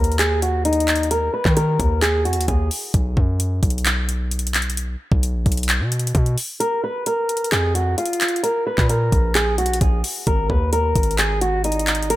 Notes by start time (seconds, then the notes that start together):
Already playing: D#2 A#4
0.04 closed hi-hat
0.12 closed hi-hat
0.19 G#4, clap, closed hi-hat
0.42 F#4, closed hi-hat
0.65 D#4, closed hi-hat
0.73 closed hi-hat
0.80 closed hi-hat
0.88 clap, closed hi-hat
0.96 closed hi-hat
1.03 closed hi-hat
1.11 A#4, closed hi-hat
1.34 B4
1.45 D#3, kick, clap
1.57 A#4, closed hi-hat
1.80 D#2, kick, closed hi-hat
2.02 G#4, clap, closed hi-hat
2.25 F2 F#4, closed hi-hat
2.33 D#2, closed hi-hat
2.41 closed hi-hat
2.48 D#2 G#4, kick, closed hi-hat
2.71 open hi-hat
2.94 B1, kick, closed hi-hat
3.17 F#2, kick
3.40 closed hi-hat
3.63 B1, kick, closed hi-hat
3.70 closed hi-hat
3.78 closed hi-hat
3.85 clap, closed hi-hat
4.09 closed hi-hat
4.31 closed hi-hat
4.39 closed hi-hat
4.47 closed hi-hat
4.54 clap, closed hi-hat
4.62 closed hi-hat
4.70 closed hi-hat
4.77 closed hi-hat
5.12 B1, kick
5.23 closed hi-hat
5.34 A#1
5.46 B1, kick, closed hi-hat
5.52 closed hi-hat
5.57 closed hi-hat
5.63 closed hi-hat
5.69 clap, closed hi-hat
5.80 B2
5.92 closed hi-hat
6.00 closed hi-hat
6.07 closed hi-hat
6.15 B2, kick, closed hi-hat
6.26 closed hi-hat
6.38 open hi-hat
6.60 A#4, closed hi-hat
6.84 B4
7.06 A#4, closed hi-hat
7.29 closed hi-hat
7.37 closed hi-hat
7.44 closed hi-hat
7.52 F2 G#4, clap, closed hi-hat
7.75 F#4, closed hi-hat
7.98 F4, closed hi-hat
8.06 closed hi-hat
8.13 closed hi-hat
8.21 clap, closed hi-hat
8.28 closed hi-hat
8.36 closed hi-hat
8.43 A#4, closed hi-hat
8.67 B4
8.78 A#2, kick, clap
8.89 A#4, closed hi-hat
9.12 A#1, kick, closed hi-hat
9.35 G#4, clap, closed hi-hat
9.58 B1 F#4, closed hi-hat
9.66 A#1, closed hi-hat
9.73 closed hi-hat
9.81 A#1 G#4, kick, closed hi-hat
10.04 open hi-hat
10.27 G#1 A#4, kick, closed hi-hat
10.50 D#2 B4, kick
10.73 A#4, closed hi-hat
10.96 G#1, kick, closed hi-hat
11.03 closed hi-hat
11.11 closed hi-hat
11.18 G#4, clap, closed hi-hat
11.41 F#4, closed hi-hat
11.64 D#4, closed hi-hat
11.72 closed hi-hat
11.79 closed hi-hat
11.87 clap, closed hi-hat
11.95 closed hi-hat
12.02 closed hi-hat
12.10 A#4, closed hi-hat